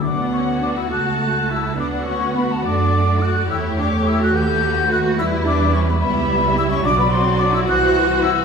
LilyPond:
<<
  \new Staff \with { instrumentName = "Flute section" } { \time 6/8 \key d \major \tempo 4. = 70 d'''8 cis'''8 d'''16 e'''16 fis'''4 e'''8 | d'''8 cis'''8 b''16 a''16 d'''4 fis'''8 | e'''8 d'''8 e'''16 fis'''16 g'''4 fis'''8 | e'''8 d'''8 cis'''16 b''16 b''4 e'''16 cis'''16 |
\key d \mixolydian d'''16 b''16 c'''8 d'''16 e'''16 fis'''4 e'''8 | }
  \new Staff \with { instrumentName = "Violin section" } { \time 6/8 \key d \major fis''4. a''4. | fis''4. d''4. | cis''4. b'4. | b'4. e''4. |
\key d \mixolydian d''4. c''4. | }
  \new Staff \with { instrumentName = "Violin section" } { \time 6/8 \key d \major fis'2. | fis'2. | g'4. fis'4. | e'4. e'4. |
\key d \mixolydian fis'2. | }
  \new Staff \with { instrumentName = "Cello section" } { \time 6/8 \key d \major d'8 cis'8 d'16 e'16 fis'4 e'8 | d'8 cis'8 b16 a16 d'4 fis'8 | e'8 d'8 e'16 fis'16 g'4 fis'8 | e'8 d'8 cis'16 b16 b4 e'16 cis'16 |
\key d \mixolydian d'16 b16 c'8 d'16 e'16 fis'4 e'8 | }
  \new Staff \with { instrumentName = "Viola section" } { \time 6/8 \key d \major b4. a4. | b4. a4. | a2. | g4. g4. |
\key d \mixolydian fis4. e4. | }
  \new Staff \with { instrumentName = "Double bass section" } { \clef bass \time 6/8 \key d \major d,4. cis,4. | d,4. fis,4. | e,4. dis,4. | e,4. cis,4. |
\key d \mixolydian b,,4. c,4. | }
>>